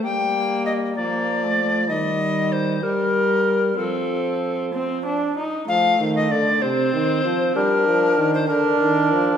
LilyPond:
<<
  \new Staff \with { instrumentName = "Recorder" } { \time 6/8 \key f \mixolydian \tempo 4. = 64 g''4 ees''8 d''4. | ees''4 c''8 bes'4. | a'4. r4. | f''8. ees''16 d''8 c''4. |
bes'4~ bes'16 c''16 bes'4. | }
  \new Staff \with { instrumentName = "Viola" } { \time 6/8 \key f \mixolydian bes4. bes8. a8. | g4. g4. | c'4. c'8 d'8 ees'8 | a4. c'4. |
d'4. d'4. | }
  \new Staff \with { instrumentName = "Trombone" } { \clef bass \time 6/8 \key f \mixolydian g4. f4. | ees4. g4. | f2~ f8 r8 | f8 ees8 d8 c8 ees8 f8 |
g8 f8 ees8 d8 ees8 f8 | }
>>